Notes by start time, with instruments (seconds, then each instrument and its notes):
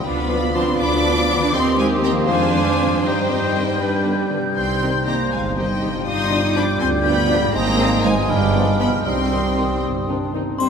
Already playing: harp D3 B3 F4
0.04 double bass section D2, bassoon F3, cello section B3, viola section D4 F4, clarinet F4, cor anglais B4, violin section F5 B5, flute section D6
0.18 viola section B3 D4
0.29 french horn section F3 B3, viola section D4 F4
0.43 viola section B3 D4
0.54 french horn section F3 B3, cello section C4, viola section D4 F4, violin section A5 C6
0.68 viola section B3 D4
0.79 double bass section D2, viola section D4 F4, cello section D4, violin section B5 D6
0.93 viola section B3 D4
1.05 french horn section F3 B3, viola section D4 F4
1.18 viola section B3 D4
1.30 french horn section F3 B3, viola section D4 F4
1.36 harp D#3
1.41 viola section B3 D4, harp C4
1.45 harp D#4
1.50 bassoon D#3, harp G4, clarinet G4
1.54 double bass section D#2, viola section C4 G4, cello section C4, cor anglais C5, violin section G5 C6, flute section D#6
1.78 french horn section D#3 C4, cello section G#3, violin section F5 G#5
2.02 french horn section D#3 C4, cello section A#3, violin section G5 A#5
2.11 harp F3
2.15 harp C4
2.20 harp D4
2.24 harp G#4
2.28 double bass section F2, bassoon F3, cello section G#3, viola section D4 C5, clarinet F4, violin section F5 G#5, flute section D6
2.52 french horn section D3 C4
2.77 french horn section D3 C4
2.86 harp G2
2.91 harp C4
2.95 harp D#4
3.00 harp C5
3.04 double bass section G2, bassoon G3, cello section G3, clarinet D#4, viola section D#4 C5, violin section D#5 G5, flute section G6
3.27 french horn section D#3 C4
3.53 french horn section D#3 C4
3.62 harp G2
3.66 harp B3
3.71 harp D4
3.75 harp G4
3.80 double bass section G2, clarinet D4, viola section D4 B4, cor anglais B4
4.04 french horn section D3 B3
4.30 french horn section D3 B3
4.38 harp C3
4.43 harp C4
4.47 harp D#4
4.52 harp G4
4.56 double bass section C2, cello section C4, clarinet D#4, cor anglais C5, violin section G5 C6
4.81 french horn section D#3 C4, viola section D#4 G4
5.06 french horn section D#3 C4, cello section A#3, viola section D#4 G4, violin section G5 A#5
5.31 double bass section G1, cello section G#3, violin section F5 G#5
5.56 french horn section D#3 C4, cello section G3, viola section D#4 G4, violin section D#5 G5
5.80 french horn section D#3 C4, viola section D#4 G4
5.88 harp G2
5.92 harp D4
5.97 harp F4
6.01 harp G4
6.06 double bass section G1, bassoon G3, cello section D#4, clarinet F4, cor anglais D5, violin section C6 D#6, flute section G6
6.30 french horn section F3 D4, viola section D4 F4
6.55 french horn section F3 D4, viola section D4 F4, cello section D4, violin section B5 D6
6.80 double bass section D2, cello section C4, violin section G#5 C6
7.04 french horn section F3 D4, cello section B3, viola section D4 F4, violin section G5 B5
7.28 french horn section F3 D4, viola section D4 F4
7.36 harp G#2
7.40 harp C4
7.45 harp D#4
7.49 harp C5
7.53 double bass section G#1, bassoon G#3, cello section A#3, clarinet D#4, cor anglais C5, violin section G5 A#5, flute section D#6
7.78 french horn section D#3 C4, viola section C4 D#4
8.04 french horn section D#3 C4, cello section G#3, viola section C4 D#4, violin section F5 G#5
8.11 harp G2
8.15 harp B3
8.20 harp F4
8.24 harp G#4
8.29 double bass section G1, cello section G3, clarinet D4, cor anglais B4, violin section D5 G5, flute section F6
8.54 french horn section F3 B3, viola section B3 F4
8.79 french horn section F3 B3, cello section B3, viola section B3 F4, violin section G5 B5
8.87 harp C3
8.92 harp C4
8.97 harp D#4
9.01 cello section C4, harp G4, violin section G5
9.05 double bass section C2, bassoon G3, clarinet D#4, cor anglais C5, violin section C6, flute section D#6
9.31 french horn section D#3 C4, viola section C4 D#4
9.56 french horn section D#3 C4, viola section C4 D#4
9.83 double bass section G1, clarinet C4
10.07 french horn section D#3 C4, viola section C4 D#4, clarinet D4
10.33 french horn section D#3 C4, viola section C4 D#4, clarinet D#4
10.58 double bass section C2, harp C3, cello section C3, bassoon G3, viola section G3 D#4, french horn section C4, violin section D#4 C5, clarinet D#4, cor anglais C5, glockenspiel C6, flute section C6, triangle